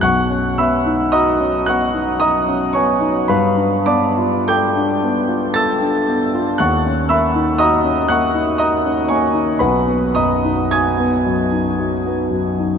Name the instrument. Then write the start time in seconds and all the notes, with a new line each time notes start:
grand piano
0.01 B1 F#5 C#6 F#6
0.30 C#4
0.58 B3 E5 B5 E6
0.86 D#4
1.12 F#4 D#5 A#5 D#6
1.40 C#4
1.66 B3 F#5 C#6 F#6
1.94 D#4
2.20 F#4 D#5 A#5 D#6
2.48 C#4
2.73 B3 C#5 G#5 C#6
3.01 D#4
3.28 G2 B4 F5 B5
3.57 D4
3.86 B3 D5 A5 D6
4.17 F4
4.48 A4 G5 D6 G6
4.77 D4
5.03 B3
5.28 F4
5.54 A4 A5 E6 A6
5.81 D4
6.08 B3
6.34 F4
6.58 D#2 F#5 C#6 F#6
6.85 C#4
7.09 A#3 E5 B5 E6
7.35 D#4
7.58 F#4 D#5 A#5 D#6
7.84 C#4
8.09 A#3 F#5 C#6 F#6
8.34 D#4
8.58 F#4 D#5 A#5 D#6
8.85 C#4
9.09 A#3 C#5 G#5 C#6
9.33 D#4
9.59 B1 B4 F#5 B5
9.87 B3
10.15 F#2 D#5 A#5 D#6
10.45 D#4
10.71 F#4 G#5 D#6 G#6
10.98 B3
11.26 F#2
11.52 D#4
11.79 F#4
12.06 B3
12.30 F#2
12.59 D#4